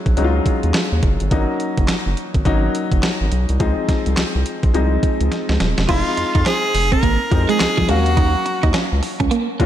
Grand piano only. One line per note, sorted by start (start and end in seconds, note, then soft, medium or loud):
0.00 0.17 F#3 medium
0.00 0.17 G#3 medium
0.00 0.17 C#4 medium
0.00 1.33 E4 medium
0.00 0.24 F4 medium
0.17 1.18 F#3 medium
0.17 1.18 G#3 medium
0.17 1.18 C#4 medium
0.17 0.26 D#4 medium
0.24 1.22 F4 medium
1.31 2.32 F#3 medium
1.31 2.32 A#3 medium
1.31 2.32 C#4 medium
1.31 2.33 D#4 medium
2.45 3.46 F#3 medium
2.45 3.46 A#3 medium
2.45 3.46 C#4 medium
2.45 3.47 D#4 loud
3.60 4.61 F3 medium
3.60 4.61 G#3 medium
3.60 4.61 C4 medium
3.60 4.61 D#4 medium
4.74 5.75 F3 medium
4.74 5.75 G#3 medium
4.74 5.75 C4 medium
4.74 5.75 D#4 medium
5.88 6.89 F3 medium
5.88 6.89 G#3 medium
5.88 6.90 C4 medium
5.88 6.90 D#4 medium
7.31 7.88 F3 medium
7.31 7.88 G#3 medium
7.31 7.89 C4 medium
7.31 7.89 D#4 medium
7.88 8.89 F#3 medium
7.88 8.89 A#3 medium
7.88 8.89 C#4 medium
7.88 8.90 F5 medium
9.60 9.66 F#3 medium
9.60 9.66 A#3 medium
9.60 9.66 C#4 medium
9.60 9.66 F4 loud